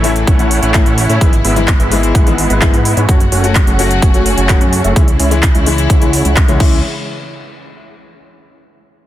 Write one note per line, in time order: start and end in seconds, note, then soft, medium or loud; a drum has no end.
0.00 0.25 A1 medium
0.00 0.36 A2 medium
0.00 1.17 C#3 medium
0.00 1.17 E3 medium
0.00 0.36 E3 medium
0.00 0.11 A3 medium
0.00 1.19 A3 medium
0.00 0.36 A3 medium
0.00 0.11 C#4 medium
0.00 0.11 E4 medium
0.00 3.05 E4 medium
0.00 0.11 C#5 medium
0.00 0.11 E5 medium
0.00 open hi-hat loud
0.04 0.36 C#4 medium
0.04 0.37 E4 medium
0.16 closed hi-hat soft
0.27 0.60 A1 loud
0.27 0.60 A3 medium
0.27 0.60 C#4 medium
0.27 0.60 E4 medium
0.27 0.60 C#5 medium
0.27 0.60 F#5 medium
0.27 kick loud
0.27 closed hi-hat medium
0.39 0.45 A2 medium
0.39 0.45 E3 medium
0.39 0.46 A3 medium
0.39 0.46 C#4 medium
0.39 0.46 E4 medium
0.39 closed hi-hat soft
0.51 open hi-hat loud
0.63 0.84 A1 medium
0.63 0.74 A3 medium
0.63 0.74 C#4 medium
0.63 0.74 E4 medium
0.63 0.74 C#5 medium
0.63 0.74 F#5 medium
0.63 closed hi-hat soft
0.74 0.84 A2 medium
0.74 0.84 E3 medium
0.74 0.85 A3 medium
0.74 0.85 C#4 medium
0.74 0.85 E4 loud
0.74 kick loud
0.74 clap loud
0.74 closed hi-hat medium
0.86 1.07 A1 loud
0.86 1.07 A3 medium
0.86 1.07 C#4 medium
0.86 1.07 E4 medium
0.86 1.07 C#5 medium
0.86 1.07 F#5 medium
0.86 closed hi-hat soft
0.98 open hi-hat loud
1.09 1.19 A2 loud
1.09 1.18 A3 loud
1.09 1.18 C#4 medium
1.09 1.18 E4 medium
1.09 1.18 C#5 medium
1.09 1.18 E5 loud
1.09 closed hi-hat soft
1.21 1.42 G#1 medium
1.21 1.27 G#2 medium
1.21 3.07 B2 medium
1.21 1.27 E3 medium
1.21 3.07 E3 medium
1.21 1.33 G#3 medium
1.21 1.28 G#3 medium
1.21 3.07 G#3 medium
1.21 1.33 B3 medium
1.21 1.28 B3 medium
1.21 1.33 E4 medium
1.21 1.28 E4 medium
1.21 1.33 B4 medium
1.21 1.33 E5 loud
1.21 kick loud
1.21 closed hi-hat medium
1.33 closed hi-hat soft
1.45 1.77 G#1 loud
1.45 1.56 G#3 medium
1.45 1.56 B3 medium
1.45 1.56 E4 medium
1.45 1.56 B4 medium
1.45 1.56 E5 medium
1.45 open hi-hat loud
1.56 1.66 G#2 medium
1.56 1.66 E3 medium
1.56 1.67 G#3 medium
1.56 1.67 B3 medium
1.56 1.67 E4 loud
1.56 closed hi-hat soft
1.68 kick loud
1.68 clap loud
1.68 closed hi-hat medium
1.80 2.13 G#1 loud
1.80 1.99 G#3 medium
1.80 1.99 B3 medium
1.80 1.99 E4 medium
1.80 1.99 B4 medium
1.80 1.99 E5 medium
1.80 closed hi-hat soft
1.91 2.24 G#2 medium
1.91 2.24 E3 medium
1.91 2.24 G#3 medium
1.91 2.24 B3 medium
1.91 2.24 E4 loud
1.91 open hi-hat loud
2.03 closed hi-hat soft
2.15 2.48 G#1 loud
2.15 2.47 G#3 medium
2.15 2.47 B3 medium
2.15 2.47 E4 medium
2.15 2.47 B4 medium
2.15 2.47 F#5 medium
2.15 kick loud
2.15 closed hi-hat medium
2.26 2.33 G#2 medium
2.26 2.33 E3 medium
2.26 2.33 G#3 medium
2.26 2.33 B3 medium
2.26 2.33 E4 medium
2.26 closed hi-hat soft
2.38 open hi-hat loud
2.50 2.71 G#1 loud
2.50 2.62 G#3 medium
2.50 2.62 B3 medium
2.50 2.62 E4 medium
2.50 2.62 B4 medium
2.50 2.62 F#5 medium
2.50 closed hi-hat soft
2.61 2.72 G#2 loud
2.61 2.72 E3 medium
2.61 2.72 G#3 medium
2.61 2.72 B3 medium
2.61 2.72 E4 loud
2.61 kick loud
2.61 clap loud
2.61 closed hi-hat medium
2.74 2.95 G#2 loud
2.74 2.94 G#3 medium
2.74 2.94 B3 medium
2.74 2.94 E4 medium
2.74 2.94 B4 medium
2.74 2.94 F#5 medium
2.74 closed hi-hat soft
2.85 open hi-hat loud
2.97 3.06 G#2 loud
2.97 3.06 G#3 medium
2.97 3.06 B3 medium
2.97 3.06 E4 medium
2.97 3.06 B4 medium
2.97 3.06 C#5 loud
2.97 closed hi-hat soft
3.08 3.30 F#1 loud
3.08 6.57 C#3 medium
3.08 3.15 F#3 medium
3.08 4.94 F#3 medium
3.08 3.15 A3 medium
3.08 4.94 A3 medium
3.08 3.21 A3 medium
3.08 3.21 C#4 medium
3.08 3.15 C#4 medium
3.08 4.94 F#4 medium
3.08 3.21 F#4 medium
3.08 3.15 F#4 medium
3.08 3.21 C#5 medium
3.08 3.21 F#5 loud
3.08 kick loud
3.08 closed hi-hat medium
3.20 closed hi-hat soft
3.32 3.65 F#1 loud
3.32 3.44 A3 medium
3.32 3.44 C#4 medium
3.32 3.44 F#4 medium
3.32 3.44 C#5 medium
3.32 3.44 F#5 medium
3.32 open hi-hat loud
3.43 3.54 F#3 medium
3.43 3.54 A3 medium
3.43 3.54 C#4 medium
3.43 3.54 F#4 loud
3.43 closed hi-hat soft
3.55 kick loud
3.55 clap loud
3.55 closed hi-hat medium
3.67 4.00 F#1 medium
3.67 3.86 A3 medium
3.67 3.86 C#4 medium
3.67 3.86 F#4 medium
3.67 3.86 C#5 medium
3.67 3.86 F#5 loud
3.67 closed hi-hat soft
3.78 4.11 F#3 medium
3.78 4.11 A3 medium
3.78 4.11 C#4 medium
3.78 4.12 F#4 medium
3.78 open hi-hat loud
3.91 closed hi-hat soft
4.02 4.35 F#1 loud
4.02 4.35 A3 medium
4.02 4.35 C#4 medium
4.02 4.35 F#4 medium
4.02 4.35 C#5 medium
4.02 4.35 G#5 medium
4.02 kick loud
4.02 closed hi-hat medium
4.13 4.20 F#3 medium
4.13 4.20 A3 medium
4.13 4.21 C#4 medium
4.13 4.21 F#4 medium
4.13 closed hi-hat soft
4.26 open hi-hat loud
4.38 4.59 F#1 loud
4.38 4.49 A3 medium
4.38 4.49 C#4 medium
4.38 4.49 F#4 medium
4.38 4.49 C#5 medium
4.38 4.49 G#5 medium
4.38 closed hi-hat soft
4.49 4.59 F#3 medium
4.49 4.59 A3 medium
4.49 4.60 C#4 medium
4.49 4.60 F#4 loud
4.49 kick loud
4.49 clap loud
4.49 closed hi-hat medium
4.61 4.82 F#2 loud
4.61 4.82 A3 medium
4.61 4.82 C#4 medium
4.61 4.82 F#4 medium
4.61 4.82 C#5 medium
4.61 4.82 G#5 medium
4.61 closed hi-hat soft
4.73 open hi-hat loud
4.84 4.94 F#1 medium
4.84 4.93 A3 loud
4.84 4.93 C#4 medium
4.84 4.93 F#4 medium
4.84 4.93 C#5 medium
4.84 4.93 E5 loud
4.84 closed hi-hat soft
4.96 5.17 C#2 medium
4.96 5.02 E3 medium
4.96 6.59 E3 medium
4.96 5.02 G#3 medium
4.96 6.59 G#3 medium
4.96 5.08 G#3 medium
4.96 5.08 C#4 medium
4.96 5.03 C#4 medium
4.96 6.58 E4 medium
4.96 5.08 E4 medium
4.96 5.03 E4 medium
4.96 5.08 C#5 medium
4.96 5.08 E5 loud
4.96 kick loud
4.96 closed hi-hat medium
5.08 closed hi-hat soft
5.20 5.52 C#2 loud
5.20 5.31 G#3 medium
5.20 5.31 C#4 medium
5.20 5.31 E4 medium
5.20 5.31 C#5 medium
5.20 5.31 E5 medium
5.20 open hi-hat loud
5.31 5.41 E3 medium
5.31 5.41 G#3 medium
5.31 5.42 C#4 medium
5.31 5.42 E4 loud
5.31 closed hi-hat soft
5.43 kick loud
5.43 clap loud
5.43 closed hi-hat medium
5.55 5.88 C#2 loud
5.55 5.74 G#3 medium
5.55 5.74 C#4 medium
5.55 5.74 E4 medium
5.55 5.74 C#5 medium
5.55 5.74 E5 medium
5.55 closed hi-hat soft
5.66 5.99 E3 medium
5.66 5.99 G#3 medium
5.66 5.99 C#4 medium
5.66 5.99 E4 loud
5.66 open hi-hat loud
5.78 closed hi-hat soft
5.90 6.23 C#2 loud
5.90 6.22 G#3 medium
5.90 6.22 C#4 medium
5.90 6.22 E4 medium
5.90 6.22 C#5 medium
5.90 6.22 F#5 medium
5.90 kick loud
5.90 closed hi-hat medium
6.01 6.08 E3 medium
6.01 6.08 G#3 medium
6.01 6.08 C#4 medium
6.01 6.08 E4 medium
6.01 closed hi-hat soft
6.13 open hi-hat loud
6.25 6.46 C#2 loud
6.25 6.37 G#3 medium
6.25 6.37 C#4 medium
6.25 6.37 E4 medium
6.25 6.37 C#5 medium
6.25 6.37 F#5 medium
6.25 closed hi-hat soft
6.37 kick loud
6.37 clap loud
6.37 closed hi-hat medium
6.48 6.60 C#2 loud
6.48 6.57 E3 medium
6.48 6.58 G#3 medium
6.48 6.59 G#3 medium
6.48 6.59 C#4 medium
6.48 6.59 E4 medium
6.48 6.61 E4 loud
6.48 6.59 C#5 medium
6.48 6.60 F#5 medium
6.48 closed hi-hat soft
6.58 6.82 C#2 loud
6.58 6.82 C#3 medium
6.58 6.77 E3 medium
6.58 6.82 E3 medium
6.58 6.82 G#3 medium
6.58 6.78 G#3 medium
6.58 6.78 C#4 medium
6.58 6.82 E4 medium
6.58 6.78 E4 medium
6.58 6.79 E4 medium
6.58 6.78 C#5 medium
6.58 6.78 E5 loud
6.58 kick loud
6.58 crash medium